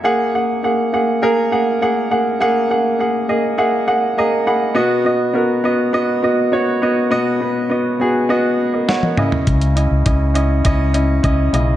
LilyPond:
<<
  \new Staff \with { instrumentName = "Upright piano" } { \time 4/4 \key fis \mixolydian \tempo 4 = 102 << { r1 | r4. dis''8 e''8 fis''8 ais''8 b''8 | r1 | r2 r8. <ais' dis''>16 <cis'' fis''>16 <ais' dis''>8 r16 |
r1 | } \\ { <ais gis' fis''>8 <ais gis' fis''>8 <ais gis' fis''>8 <ais gis' fis''>8 <ais gis' ais'>8 <ais gis' fis''>8 <ais gis' fis''>8 <ais gis' fis''>8 | <ais gis' fis''>8 <ais gis' fis''>8 <ais gis' fis''>8 <ais gis'>8 <ais gis' fis''>8 <ais gis'>8 <ais gis' dis''>8 <ais gis' fis''>8 | <b fis' dis''>8 <b fis' dis''>8 <b fis' ais'>8 <b fis' dis''>8 <b fis' dis''>8 <b fis' dis''>8 <b fis' cis''>8 <b fis' dis''>8 | <b fis' dis''>8 <b fis' b'>8 <b fis' dis''>8 <b fis' gis'>8 <b fis' dis''>8 r4 <cis' e' dis''>8~ |
<cis' e' dis''>8 <cis' e' dis''>8 <cis' e' dis''>8 <cis' e' dis''>8 <cis' e' dis''>8 <cis' e' dis''>8 <cis' e' dis''>8 <cis' e' dis''>8 | } >> }
  \new Staff \with { instrumentName = "Upright piano" } { \clef bass \time 4/4 \key fis \mixolydian r1 | r1 | b,4. r2 r8 | b,4. r2 cis8~ |
cis4 r2 r8 cis8 | }
  \new Staff \with { instrumentName = "Fingered electric bass" } { \clef bass \time 4/4 \key fis \mixolydian r1 | r1 | r1 | r1 |
cis,8. cis,16 cis,4 cis,4 cis,8 b,,8 | }
  \new DrumStaff \with { instrumentName = "Drums" } \drummode { \time 4/4 r4 r4 r4 r4 | r4 r4 r4 r4 | r4 r4 r4 r4 | r4 r4 r4 sn16 tommh16 toml16 tomfh16 |
<hh bd>16 hh16 hh8 <hh bd>8 hh8 <hh bd>8 hh8 <hh bd>8 hh8 | }
>>